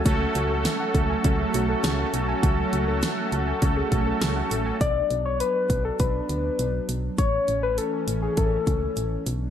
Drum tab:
HH |xxxxxxxx|xxxxxxxx|xxxxxxxx|xxxxxxxx|
SD |--o---o-|--o---o-|--------|--------|
BD |o--oo---|o---oo--|o--oo---|o---oo--|